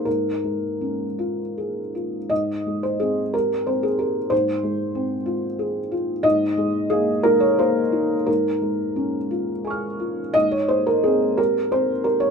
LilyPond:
\new Staff \with { instrumentName = "Felt piano" } { \time 6/8 \key aes \major \tempo 4. = 58 << { bes'2~ bes'8 r8 | ees''8. c''16 aes'8 bes'8 c''16 aes'16 bes'8 | c''2~ c''8 r8 | ees''4 aes'8 bes'16 des''16 c''4 |
bes'4. r8 <aes'' des''' f'''>4 | ees''16 des''16 c''16 bes'16 aes'8 bes'8 c''8 bes'16 des''16 | } \\ { aes,8 aes8 des'8 f'8 aes'8 f'8 | aes,8 aes8 c'8 g'8 c'8 g'8 | aes,8 aes8 c'8 f'8 aes'8 f'8 | aes,8 aes8 bes8 ees'8 bes8 ees'8 |
aes,8 aes8 des'8 f'8 aes'8 f'8 | aes,8 aes8 c'8 g'8 c'8 g'8 | } >> }